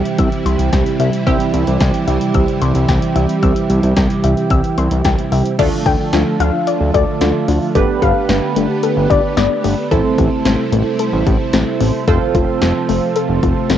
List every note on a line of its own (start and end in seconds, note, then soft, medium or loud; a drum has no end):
0.00 5.55 C3 medium
0.00 5.55 E3 medium
0.00 1.23 G3 medium
0.00 5.55 G3 medium
0.00 1.23 C4 medium
0.00 1.22 E4 medium
0.00 5.55 E4 medium
0.00 1.23 G4 medium
0.05 closed hi-hat soft
0.18 0.29 C2 loud
0.18 0.34 E6 medium
0.18 kick loud
0.18 closed hi-hat medium
0.32 closed hi-hat soft
0.45 0.56 C2 loud
0.45 0.61 C6 medium
0.45 closed hi-hat medium
0.59 0.70 C2 loud
0.59 closed hi-hat medium
0.73 0.83 C2 loud
0.73 0.88 G5 medium
0.73 kick loud
0.73 snare loud
0.73 closed hi-hat medium
0.86 closed hi-hat medium
1.00 1.10 C2 medium
1.00 1.15 E5 medium
1.00 closed hi-hat medium
1.13 closed hi-hat medium
1.27 1.37 C2 loud
1.27 5.55 G3 medium
1.27 5.55 C4 medium
1.27 5.55 E4 medium
1.27 5.55 G4 medium
1.27 1.42 E6 loud
1.27 kick loud
1.27 closed hi-hat medium
1.40 closed hi-hat medium
1.54 1.65 C2 loud
1.54 closed hi-hat medium
1.67 1.78 C2 loud
1.67 closed hi-hat medium
1.80 1.92 C2 loud
1.80 1.97 G5 medium
1.80 kick loud
1.80 snare loud
1.80 closed hi-hat medium
1.94 closed hi-hat medium
2.08 2.19 C2 loud
2.08 2.23 E5 medium
2.08 closed hi-hat medium
2.21 closed hi-hat soft
2.34 2.46 C2 loud
2.34 2.50 E6 loud
2.34 kick loud
2.34 closed hi-hat medium
2.48 closed hi-hat soft
2.62 2.73 C2 loud
2.62 2.77 C6 medium
2.62 closed hi-hat medium
2.75 2.86 C2 loud
2.75 closed hi-hat medium
2.89 3.00 C2 loud
2.89 3.04 G5 medium
2.89 kick loud
2.89 snare loud
2.89 closed hi-hat medium
3.02 closed hi-hat medium
3.16 3.27 C2 loud
3.16 3.31 E5 medium
3.16 closed hi-hat medium
3.29 closed hi-hat medium
3.43 3.54 C2 loud
3.43 3.59 E6 loud
3.43 kick loud
3.43 closed hi-hat medium
3.56 closed hi-hat medium
3.70 3.81 C2 loud
3.70 closed hi-hat medium
3.83 3.94 C2 medium
3.83 closed hi-hat medium
3.97 4.08 C2 loud
3.97 4.13 G5 medium
3.97 kick loud
3.97 snare loud
3.97 closed hi-hat medium
4.10 closed hi-hat medium
4.24 4.35 C2 loud
4.24 4.40 E5 medium
4.24 closed hi-hat medium
4.37 closed hi-hat medium
4.50 4.62 C2 loud
4.50 4.67 E6 loud
4.50 kick loud
4.50 closed hi-hat medium
4.64 closed hi-hat soft
4.78 4.89 C2 loud
4.78 4.94 C6 medium
4.78 closed hi-hat medium
4.91 5.02 C2 loud
4.91 closed hi-hat medium
5.05 5.16 C2 loud
5.05 5.21 G5 medium
5.05 kick loud
5.05 snare loud
5.05 closed hi-hat medium
5.18 closed hi-hat medium
5.32 5.43 C2 loud
5.32 5.48 E5 medium
5.32 open hi-hat medium
5.46 closed hi-hat medium
5.59 5.70 D2 loud
5.59 7.73 D3 medium
5.59 7.73 F3 medium
5.59 7.71 A3 medium
5.59 7.73 A3 medium
5.59 7.71 D4 medium
5.59 7.71 F4 medium
5.59 7.73 F4 medium
5.59 7.71 A4 medium
5.59 5.75 D5 loud
5.59 kick loud
5.59 closed hi-hat medium
5.59 crash medium
5.86 5.97 D2 medium
5.86 6.02 A4 medium
5.86 5.95 G5 medium
5.86 kick medium
5.86 closed hi-hat medium
6.13 6.24 D2 loud
6.13 6.29 F4 medium
6.13 snare loud
6.13 closed hi-hat medium
6.40 6.51 D2 loud
6.40 6.56 D4 medium
6.40 6.78 F5 medium
6.40 closed hi-hat medium
6.67 6.83 D5 medium
6.67 closed hi-hat medium
6.80 6.91 D2 loud
6.94 7.05 D2 loud
6.94 7.10 A4 medium
6.94 7.03 D5 medium
6.94 kick loud
6.94 closed hi-hat medium
7.21 7.32 D2 loud
7.21 7.37 F4 medium
7.21 snare loud
7.21 closed hi-hat medium
7.48 7.59 D2 loud
7.48 7.64 D4 medium
7.48 open hi-hat medium
7.75 7.86 G1 loud
7.75 9.89 D3 medium
7.75 12.03 A3 medium
7.75 9.89 B3 medium
7.75 9.87 B3 medium
7.75 9.87 D4 medium
7.75 9.89 G4 medium
7.75 9.87 G4 medium
7.75 7.91 A4 loud
7.75 9.87 B4 medium
7.75 kick loud
7.75 closed hi-hat medium
8.02 8.13 G1 loud
8.02 8.18 G4 medium
8.02 8.11 F5 medium
8.02 kick medium
8.02 closed hi-hat medium
8.29 8.40 G1 loud
8.29 8.45 B3 medium
8.29 snare loud
8.29 closed hi-hat medium
8.56 8.67 G1 loud
8.56 8.72 A3 medium
8.56 closed hi-hat medium
8.83 8.99 A4 loud
8.83 closed hi-hat medium
8.97 9.08 G1 loud
9.10 9.21 G1 loud
9.10 9.26 G4 medium
9.10 9.28 D5 medium
9.10 kick loud
9.10 closed hi-hat medium
9.37 9.48 G1 loud
9.37 9.53 B3 medium
9.37 9.75 D5 medium
9.37 snare loud
9.37 closed hi-hat medium
9.64 9.75 G1 loud
9.64 9.80 A3 medium
9.64 open hi-hat medium
9.91 10.02 A1 loud
9.91 12.05 C3 medium
9.91 12.06 G3 medium
9.91 12.04 C4 medium
9.91 12.04 E4 medium
9.91 12.06 E4 medium
9.91 12.04 A4 medium
9.91 10.07 A4 loud
9.91 12.04 C5 medium
9.91 kick loud
9.91 closed hi-hat medium
10.18 10.29 A1 loud
10.18 10.34 G4 medium
10.18 kick loud
10.18 closed hi-hat medium
10.45 10.56 A1 loud
10.45 10.61 C4 medium
10.45 snare loud
10.45 closed hi-hat medium
10.72 10.83 A1 loud
10.72 10.88 A3 medium
10.72 closed hi-hat medium
10.99 11.15 A4 medium
10.99 closed hi-hat medium
11.13 11.24 A1 loud
11.27 11.38 A1 loud
11.27 11.42 G4 medium
11.27 kick loud
11.27 closed hi-hat medium
11.53 11.64 A1 loud
11.53 11.69 C4 medium
11.53 snare loud
11.53 closed hi-hat medium
11.81 11.91 A1 loud
11.81 11.96 A3 medium
11.81 open hi-hat medium
12.08 12.18 F1 loud
12.08 13.78 C3 medium
12.08 13.78 F3 medium
12.08 13.78 A3 medium
12.08 13.78 C4 medium
12.08 13.78 F4 medium
12.08 13.78 A4 medium
12.08 12.24 A4 loud
12.08 13.78 C5 medium
12.08 kick loud
12.08 closed hi-hat medium
12.35 12.45 F1 loud
12.35 12.50 F4 medium
12.35 kick loud
12.35 closed hi-hat medium
12.62 12.72 F1 loud
12.62 12.78 C4 medium
12.62 snare loud
12.62 closed hi-hat medium
12.89 13.00 F1 loud
12.89 13.05 A3 medium
12.89 open hi-hat medium
13.16 13.32 A4 loud
13.16 closed hi-hat medium
13.29 13.40 F1 medium
13.43 13.54 F1 loud
13.43 13.59 F4 medium
13.43 kick loud
13.43 closed hi-hat medium
13.70 13.78 F1 loud
13.70 13.78 C4 medium
13.70 snare loud
13.70 closed hi-hat medium